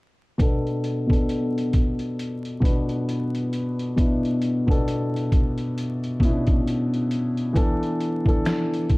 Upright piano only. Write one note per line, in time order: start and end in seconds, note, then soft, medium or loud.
0.38 0.86 B2 medium
0.38 0.87 B3 medium
0.38 0.88 D4 medium
0.38 0.88 A4 medium
1.07 2.16 B2 medium
1.07 2.17 B3 medium
1.07 2.17 D4 medium
1.07 2.18 A4 medium
2.60 3.57 B2 medium
2.60 3.58 B3 medium
2.60 3.58 D4 medium
2.60 3.59 B4 medium
3.96 4.45 B2 medium
3.96 4.45 B3 medium
3.96 4.46 D4 medium
3.96 4.46 E4 medium
4.67 5.75 B2 medium
4.67 5.76 B3 medium
4.67 5.76 D4 medium
4.67 5.77 A4 medium
6.20 7.17 B2 medium
6.20 7.17 B3 medium
6.20 6.30 C#4 medium
6.25 7.19 E4 medium
6.30 7.21 D4 medium
7.53 8.02 E3 medium
7.53 8.03 B3 medium
7.53 8.04 D4 medium
7.57 8.04 A4 medium
8.24 8.98 E3 medium
8.24 8.98 B3 medium
8.24 8.98 D4 medium
8.24 8.98 A4 medium